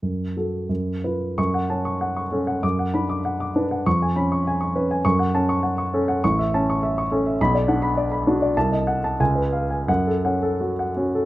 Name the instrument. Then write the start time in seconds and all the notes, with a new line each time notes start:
grand piano
0.02 F#2
0.37 F#4 A4
0.69 F#2
1.04 F4 B4
1.38 F#2 C#6
1.54 F#5
1.70 C#4 A5
1.85 C#6
2.01 F#5
2.17 C#6
2.32 C#4 A4
2.47 F#5
2.63 F#2 D6
2.79 F#5
2.94 D4 B5
3.09 D6
3.25 F#5
3.40 D6
3.56 D4 B4
3.71 F#5
3.86 F2 C#6
4.02 G#5
4.16 C#4 B5
4.32 C#6
4.47 G#5
4.61 C#6
4.76 C#4 B4
4.91 G#5
5.05 F#2 C#6
5.19 F#5
5.35 C#4 A5
5.49 C#6
5.63 F#5
5.78 C#6
5.94 C#4 A4
6.08 F#5
6.24 A1 C#6
6.39 E5
6.54 C#4 A5
6.70 C#6
6.83 E5
6.98 C#6
7.11 C#4 A4
7.26 E5
7.41 B1 B5
7.55 D5
7.68 D4 F#5
7.82 B5
7.97 D5
8.12 B5
8.27 D4 F#4
8.42 D5
8.57 C2 A5
8.72 D#5
8.87 F#5
9.04 A5
9.20 C#2 G#5
9.35 B4
9.52 F5
9.70 G#5
9.88 F#2 F#5
10.07 A4
10.25 C#4 F#5
10.42 A4
10.61 F#4
10.79 F#5
10.97 C#4 F#4
11.15 A4